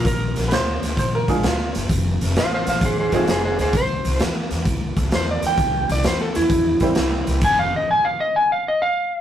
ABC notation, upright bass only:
X:1
M:4/4
L:1/8
Q:"Swing" 1/4=130
K:Cdor
V:1 name="Upright bass" clef=bass
B,,, B,,, D,, D,, B,,, B,,, D,, G,,, | F,,, F,,, A,,, A,,, A,,, A,,, F,,, D,, | C,, C,, =E,, E,, C,, C,, E,, E,, | C,, C,, =E,, E,, E,, E,, C,, C,, |
F,,, z6 z |]